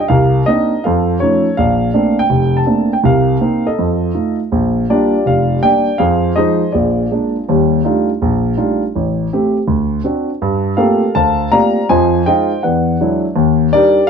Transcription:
0.01 0.07 D#5 medium
0.08 0.41 C2 medium
0.08 0.79 A#4 medium
0.08 0.47 F5 medium
0.46 0.71 A#3 medium
0.46 0.71 C4 medium
0.46 0.72 D4 soft
0.46 0.72 D#4 medium
0.46 0.84 D#5 medium
0.84 1.16 F2 medium
0.84 1.54 A4 medium
0.84 1.21 F5 medium
1.20 1.45 F3 soft
1.20 1.45 A3 soft
1.20 1.45 C#4 soft
1.20 1.46 D#4 medium
1.20 1.54 C#5 medium
1.57 1.89 A#1 medium
1.57 2.27 D5 medium
1.57 2.13 F5 medium
1.94 2.18 A3 medium
1.94 2.18 A#3 medium
1.94 2.19 C4 soft
1.94 2.18 D4 medium
2.19 2.56 G5 medium
2.30 2.62 F1 medium
2.57 2.93 A5 medium
2.66 2.91 A3 soft
2.66 2.91 A#3 soft
2.66 2.92 C4 soft
2.66 2.92 D4 medium
2.93 2.98 G5 medium
3.04 3.36 C2 medium
3.04 3.36 C3 medium
3.04 3.74 A#4 medium
3.04 3.67 F5 medium
3.41 3.66 A#3 medium
3.41 3.66 C4 medium
3.41 3.66 D#4 medium
3.66 4.35 A4 medium
3.66 4.35 D#5 medium
3.79 4.10 F2 medium
4.15 4.39 A3 medium
4.15 4.39 D#4 soft
4.15 4.39 F4 soft
4.52 4.83 A#1 medium
4.89 5.13 G3 medium
4.89 5.14 A#3 medium
4.89 5.14 D4 medium
4.89 5.59 F4 medium
4.89 5.59 G4 medium
4.89 5.26 D5 medium
5.26 5.57 F1 medium
5.26 5.62 D5 medium
5.26 5.60 F5 medium
5.62 5.87 G3 soft
5.62 5.87 A#3 soft
5.62 5.87 D4 medium
5.62 5.97 D5 medium
5.62 6.00 G5 loud
5.98 6.31 F2 medium
5.98 6.36 G#4 medium
5.98 6.36 C5 medium
5.98 6.36 F5 medium
6.36 6.61 F3 medium
6.36 6.61 G#3 soft
6.36 6.61 D#4 medium
6.36 6.71 G#4 medium
6.36 6.71 C5 medium
6.36 6.73 D#5 medium
6.72 7.05 A#1 medium
6.72 7.43 F4 soft
6.72 7.43 G#4 soft
6.72 7.29 D5 medium
7.12 7.35 G#3 soft
7.12 7.35 A#3 soft
7.12 7.36 D4 medium
7.48 7.79 D#2 medium
7.48 7.79 G3 medium
7.84 8.08 G3 medium
7.84 8.08 A3 medium
7.84 8.09 D4 soft
7.84 8.08 D#4 medium
7.84 8.09 F4 medium
8.22 8.53 A#1 medium
8.57 8.81 G3 medium
8.57 8.81 A3 soft
8.57 8.82 D4 soft
8.57 8.82 D#4 soft
8.57 8.82 F4 medium
8.96 9.26 A1 medium
9.33 9.56 A3 medium
9.33 9.56 C4 medium
9.33 9.56 G4 medium
9.68 9.99 D2 medium
10.04 10.29 C4 medium
10.04 10.29 D4 soft
10.04 10.29 F#4 medium
10.42 10.73 G2 medium
10.77 11.02 A3 medium
10.77 11.02 A#3 medium
10.77 11.02 C4 medium
10.77 11.02 F4 medium
10.77 11.02 G4 medium
10.77 11.47 A4 medium
10.77 11.47 A#4 medium
10.77 11.15 F5 medium
11.15 11.47 D2 medium
11.15 11.85 C5 medium
11.15 11.51 F5 medium
11.15 11.52 A5 medium
11.52 11.76 A3 soft
11.52 11.76 A#3 soft
11.52 11.76 C4 soft
11.52 11.76 F4 soft
11.52 11.77 G4 medium
11.52 11.86 D5 medium
11.52 11.86 F5 medium
11.52 11.86 A#5 loud
11.89 12.20 F2 medium
11.89 12.21 F3 medium
11.89 12.26 C5 medium
11.89 12.26 D#5 medium
11.89 12.27 G#5 medium
12.26 12.51 G#3 medium
12.26 12.51 D#4 medium
12.26 12.51 F4 medium
12.26 12.60 C5 medium
12.26 12.60 D#5 medium
12.26 12.63 G5 medium
12.63 12.95 E2 medium
12.63 13.32 B4 soft
12.63 13.33 D5 soft
12.63 13.19 F#5 medium
13.00 13.24 F#3 medium
13.00 13.24 G#3 soft
13.00 13.25 D4 soft
13.00 13.25 E4 medium
13.36 13.67 D#2 medium
13.72 13.97 G3 medium
13.72 13.97 D4 medium
13.72 13.98 D#4 medium
13.72 14.10 G4 medium
13.72 14.07 A#4 medium
13.72 14.07 D5 loud

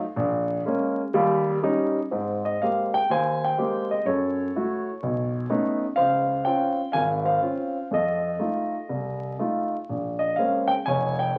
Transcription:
0.16 0.58 A#1 medium
0.65 0.99 G#3 medium
0.65 1.00 A#3 medium
0.65 1.00 C#4 medium
1.14 1.57 D#2 medium
1.14 1.57 G3 medium
1.63 1.98 G3 medium
1.63 1.98 C#4 medium
1.63 1.98 D#4 medium
2.11 2.55 G#2 medium
2.11 2.55 C4 soft
2.45 2.62 D#5 medium
2.62 2.97 G#3 soft
2.62 2.97 A#3 soft
2.62 2.97 C4 soft
2.62 2.97 G4 soft
2.62 2.96 F5 medium
2.94 3.09 G5 medium
3.10 3.52 D#2 medium
3.10 4.03 C5 medium
3.10 3.44 G#5 medium
3.44 3.93 G5 medium
3.58 3.92 G#3 soft
3.58 3.93 A#3 soft
3.58 3.93 C4 soft
3.58 3.93 G4 medium
3.91 4.08 D#5 medium
4.05 4.47 F#2 medium
4.05 5.78 A4 soft
4.05 5.77 C#5 medium
4.56 4.89 A3 soft
4.56 4.89 E4 soft
4.56 4.89 F#4 soft
5.03 5.44 B1 medium
5.50 5.83 A3 medium
5.50 5.83 B3 soft
5.50 5.84 C#4 soft
5.50 5.84 D#4 medium
5.96 6.39 C#2 soft
5.96 6.90 C5 medium
5.96 6.46 F5 medium
6.45 6.79 C4 soft
6.45 6.79 C#4 soft
6.45 6.80 F4 soft
6.45 6.95 G5 medium
6.92 7.36 G#1 medium
6.92 7.24 F5 medium
6.92 7.01 G#5 medium
7.25 7.86 C5 soft
7.25 7.86 F5 medium
7.42 7.76 C4 soft
7.42 7.76 C#4 soft
7.42 7.76 F4 medium
7.91 8.33 F2 soft
7.91 9.36 A4 soft
7.91 9.36 D#5 medium
8.39 8.74 A3 soft
8.39 8.74 D#4 soft
8.39 8.74 F4 soft
8.89 9.32 C2 soft
9.39 9.74 A3 medium
9.39 9.74 D#4 soft
9.39 9.74 F4 soft
9.89 10.32 A#1 soft
10.19 10.35 D#5 medium
10.36 10.73 G#3 soft
10.36 10.73 A#3 soft
10.36 10.73 C4 soft
10.36 10.73 C#4 medium
10.36 10.67 F5 medium
10.68 10.73 G5 medium
10.86 11.29 F1 medium
10.86 11.38 C#5 medium
10.86 11.20 G#5 medium
11.19 11.38 G5 medium

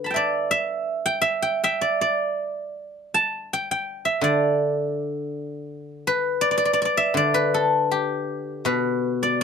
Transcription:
0.00 0.53 D3 soft
0.00 1.16 B4 medium
0.00 0.16 D5 medium
0.00 0.14 E5 medium
0.04 1.51 A5 soft
0.04 1.39 B5 soft
0.11 0.50 E5 soft
0.11 1.05 G5 soft
0.16 1.81 D5 medium
0.51 1.21 E5 medium
1.06 1.42 G5 medium
1.21 1.64 E5 medium
1.42 1.63 G5 medium
1.64 3.36 E5 medium
1.64 3.19 G5 medium
1.81 2.01 D5 medium
2.01 3.86 D5 medium
3.14 4.59 A5 medium
3.53 3.71 G5 medium
3.71 5.26 G5 medium
4.05 5.77 E5 medium
4.21 6.40 D3 medium
4.21 6.08 D5 medium
6.07 7.34 B4 medium
6.41 6.51 D5 medium
6.51 6.57 D5 medium
6.58 6.65 D5 medium
6.65 6.73 D5 medium
6.73 6.81 D5 medium
6.82 6.85 D5 medium
6.82 7.17 D5 medium
6.97 8.69 E5 medium
7.14 9.42 D3 soft
7.14 9.02 D5 medium
7.34 8.65 B4 medium
7.54 9.43 A4 medium
7.91 9.43 G4 medium
8.65 9.43 B2 soft
8.65 9.43 B4 medium
9.23 9.41 D5 medium

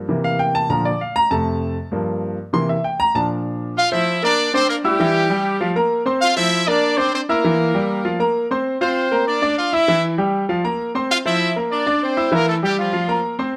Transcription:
0.08 0.67 C3 medium
0.08 0.67 E3 medium
0.08 0.67 A#3 medium
0.24 0.39 F5 loud
0.39 0.54 G5 medium
0.55 0.70 A5 loud
0.69 0.90 A#2 soft
0.69 0.90 D3 soft
0.69 0.91 F3 medium
0.69 0.85 A#5 medium
0.85 1.00 D5 medium
1.01 1.16 F5 medium
1.16 1.31 A#5 loud
1.30 1.74 F2 medium
1.30 1.75 C3 medium
1.30 1.75 A3 medium
1.30 1.88 A5 medium
1.92 2.36 G2 medium
1.92 2.36 F3 soft
1.92 2.36 A#3 medium
2.53 2.74 C3 medium
2.53 2.74 E3 medium
2.53 2.74 A#3 medium
2.53 2.69 C6 medium
2.69 2.84 E5 medium
2.84 2.99 G5 medium
3.00 3.15 A#5 loud
3.15 3.73 A#2 soft
3.15 3.73 F3 medium
3.15 3.74 D4 medium
3.15 3.24 A5 medium
3.77 3.91 F4 medium
3.77 3.91 F5 loud
3.92 4.17 F3 medium
3.92 4.21 E4 medium
3.92 4.17 C5 medium
3.92 4.21 E5 medium
4.22 4.48 A#3 medium
4.22 4.51 D4 medium
4.22 4.48 A#4 medium
4.22 4.52 D5 loud
4.22 4.48 A#5 medium
4.54 4.68 C4 medium
4.54 4.79 D4 medium
4.54 4.68 C5 loud
4.54 4.79 D5 medium
4.54 4.79 D6 medium
4.69 4.76 A#3 medium
4.69 4.76 A#4 medium
4.84 5.72 G3 medium
4.84 4.97 E4 medium
4.84 5.72 G4 loud
4.84 4.97 E5 medium
4.84 4.97 E6 medium
5.00 5.24 E3 medium
5.00 5.25 E4 medium
5.00 5.25 E5 loud
5.30 5.55 G3 medium
5.30 5.55 G4 medium
5.30 5.55 G5 medium
5.61 5.73 F3 medium
5.61 5.73 F4 medium
5.61 5.73 F5 medium
5.76 6.01 A#3 medium
5.76 6.01 A#4 medium
5.76 6.01 A#5 medium
6.06 6.31 C4 medium
6.06 6.31 C5 medium
6.06 6.31 C6 medium
6.21 6.36 F4 loud
6.21 6.36 F5 loud
6.37 6.62 F3 medium
6.37 6.65 E4 medium
6.37 6.62 C5 medium
6.37 6.65 E5 loud
6.68 6.92 A#3 medium
6.68 6.98 D4 medium
6.68 6.93 A#4 medium
6.68 6.98 D5 loud
6.68 6.93 A#5 medium
6.97 7.13 C4 medium
6.97 7.23 D4 medium
6.97 7.12 C5 loud
6.97 7.23 D5 medium
6.97 7.23 D6 medium
7.13 7.21 C4 medium
7.13 7.20 C5 medium
7.29 8.17 A#3 medium
7.29 7.41 E4 medium
7.29 8.16 A#4 medium
7.29 7.41 E5 medium
7.29 7.42 E6 medium
7.44 7.69 E3 medium
7.44 7.69 E4 medium
7.44 7.69 E5 medium
7.74 7.99 G3 medium
7.74 7.99 G4 medium
7.74 8.00 G5 medium
8.05 8.17 F3 medium
8.05 8.17 F4 medium
8.05 8.17 F5 medium
8.20 8.45 A#3 medium
8.20 8.45 A#4 medium
8.20 8.45 A#5 medium
8.51 8.76 C4 medium
8.51 8.76 C5 medium
8.51 8.76 C6 medium
8.81 9.24 C4 medium
8.81 9.06 F4 medium
8.81 9.24 C5 medium
8.81 9.06 F5 medium
8.81 9.06 F6 medium
9.11 9.36 A#3 medium
9.11 9.37 A#4 medium
9.11 9.37 A#5 medium
9.27 9.55 D4 medium
9.27 9.55 D5 loud
9.42 9.67 D4 medium
9.42 9.67 D5 loud
9.42 9.67 D6 medium
9.58 9.72 F4 medium
9.58 9.72 F5 medium
9.73 9.85 E4 medium
9.73 10.04 E4 medium
9.73 9.85 E5 medium
9.73 10.03 E5 loud
9.73 9.85 E6 medium
9.88 10.13 E3 medium
9.88 10.13 E4 medium
9.88 10.13 E5 loud
10.18 10.43 G3 medium
10.18 10.43 G4 medium
10.18 10.43 G5 medium
10.49 10.61 F3 medium
10.49 10.62 F4 medium
10.49 10.62 F5 medium
10.64 10.89 A#3 medium
10.64 10.89 A#4 medium
10.64 10.89 A#5 medium
10.95 11.20 C4 medium
10.95 11.20 C5 medium
10.95 11.20 C6 medium
11.10 11.18 F4 loud
11.10 11.17 F5 loud
11.25 11.50 F3 medium
11.25 11.54 E4 medium
11.25 11.51 C5 medium
11.25 11.54 E5 loud
11.56 11.81 A#3 medium
11.56 11.81 A#4 medium
11.56 11.81 A#5 medium
11.71 12.00 D4 medium
11.71 12.00 D5 medium
11.86 12.11 D4 loud
11.86 12.12 D5 loud
11.86 12.12 D6 medium
12.03 12.31 C4 medium
12.03 12.30 C5 medium
12.17 12.29 E4 medium
12.17 12.29 E5 medium
12.17 12.30 E6 medium
12.32 12.57 E3 medium
12.32 12.48 A#3 medium
12.32 12.57 E4 medium
12.32 12.48 A#4 loud
12.32 12.57 E5 medium
12.49 12.55 A3 medium
12.49 12.55 A4 medium
12.63 12.88 G3 medium
12.63 12.77 G3 medium
12.63 12.88 G4 medium
12.63 12.77 G4 medium
12.63 12.88 G5 medium
12.79 13.21 F3 medium
12.79 13.21 F4 medium
12.93 13.05 F3 medium
12.93 13.06 F4 medium
12.93 13.06 F5 medium
13.08 13.33 A#3 medium
13.08 13.34 A#4 medium
13.08 13.34 A#5 loud
13.39 13.51 C4 medium
13.39 13.51 C5 medium
13.39 13.52 C6 medium

